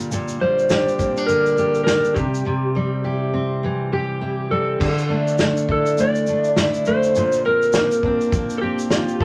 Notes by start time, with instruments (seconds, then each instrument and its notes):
Already playing: steel-string acoustic guitar A#2 D3 G3 A#3 D4
0.00 shaker
0.12 steel-string acoustic guitar A#2 G3, shaker
0.28 shaker
0.41 steel-string acoustic guitar G3 A#3, electric slide guitar C5
0.59 shaker
0.70 steel-string acoustic guitar D4 G4, snare, shaker
0.88 shaker
0.99 steel-string acoustic guitar A#3 C4, kick, shaker
1.17 steel-string acoustic guitar D4, shaker
1.26 steel-string acoustic guitar D3 G3, electric slide guitar A#4, shaker
1.46 shaker
1.58 steel-string acoustic guitar A#3 G4, shaker
1.75 shaker
1.84 steel-string acoustic guitar D4, electric slide guitar A#4, snare, shaker
1.89 steel-string acoustic guitar D4
2.04 shaker
2.14 steel-string acoustic guitar C3 G3, electric slide guitar G4, kick, shaker
2.34 shaker
2.45 steel-string acoustic guitar C3 G3
2.75 steel-string acoustic guitar G3 C4
3.04 steel-string acoustic guitar E4 G4
3.34 steel-string acoustic guitar C4
3.63 steel-string acoustic guitar E3 G3
3.93 steel-string acoustic guitar C4 G4, electric slide guitar G4
4.21 steel-string acoustic guitar C4 E4
4.51 steel-string acoustic guitar G3 C4, electric slide guitar A4
4.80 steel-string acoustic guitar D3 F3, kick, crash
4.98 shaker
5.10 steel-string acoustic guitar A3 D4
5.27 shaker
5.38 steel-string acoustic guitar F3 A3, snare, shaker
5.57 shaker
5.69 steel-string acoustic guitar D4 E4, electric slide guitar A4, kick
5.86 shaker
5.98 steel-string acoustic guitar F3 A3, electric slide guitar D5, shaker
6.15 shaker
6.27 steel-string acoustic guitar A3 D4, shaker
6.44 shaker
6.56 steel-string acoustic guitar F3 E4, snare, shaker
6.74 shaker
6.85 steel-string acoustic guitar A3, electric slide guitar C5, shaker
7.03 shaker
7.15 steel-string acoustic guitar A#2 F3, shaker
7.32 shaker
7.45 steel-string acoustic guitar C4, electric slide guitar A#4
7.62 shaker
7.73 steel-string acoustic guitar F3 A#3, snare, shaker
7.91 shaker
8.03 steel-string acoustic guitar C4 D4, kick
8.21 shaker
8.32 steel-string acoustic guitar F3 A#3, kick, shaker
8.50 shaker
8.58 steel-string acoustic guitar C4, electric slide guitar G4 A4
8.63 steel-string acoustic guitar C4
8.79 shaker
8.90 steel-string acoustic guitar F3 F4, snare, shaker
9.08 shaker
9.21 steel-string acoustic guitar G3, electric slide guitar A4, kick